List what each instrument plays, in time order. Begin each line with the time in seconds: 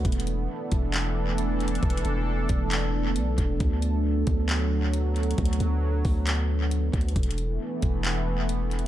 Already playing: analog synth pad A3 B3
0.05 808-style bass E1, analog synth pad E3 D4 A4, kick, closed hi-hat
0.12 closed hi-hat
0.20 closed hi-hat
0.27 closed hi-hat
0.72 808-style bass E1, kick, closed hi-hat
0.94 clap, closed hi-hat
1.38 closed hi-hat
1.60 closed hi-hat
1.68 closed hi-hat
1.75 closed hi-hat
1.83 808-style bass E1, kick, closed hi-hat
1.90 closed hi-hat
1.97 closed hi-hat
2.05 808-style bass E1, closed hi-hat
2.49 808-style bass E1, kick, closed hi-hat
2.71 clap, closed hi-hat
3.16 808-style bass B1, closed hi-hat
3.38 808-style bass E1, kick, closed hi-hat
3.60 808-style bass D2, analog synth pad F#3, kick, closed hi-hat
3.82 closed hi-hat
4.27 808-style bass D2, kick, closed hi-hat
4.49 clap, closed hi-hat
4.94 closed hi-hat
5.16 closed hi-hat
5.23 closed hi-hat
5.31 closed hi-hat
5.38 808-style bass D2, kick, closed hi-hat
5.45 closed hi-hat
5.53 closed hi-hat
5.60 808-style bass D2, closed hi-hat
6.05 808-style bass D2, kick, open hi-hat
6.27 clap, closed hi-hat
6.71 closed hi-hat
6.93 808-style bass D2, kick, closed hi-hat
7.01 closed hi-hat
7.09 closed hi-hat
7.16 808-style bass E1, analog synth pad E3 A3 B3, kick, closed hi-hat
7.23 closed hi-hat
7.31 closed hi-hat
7.38 closed hi-hat
7.82 808-style bass E1, kick, closed hi-hat
8.05 clap, closed hi-hat
8.49 closed hi-hat
8.71 closed hi-hat
8.79 closed hi-hat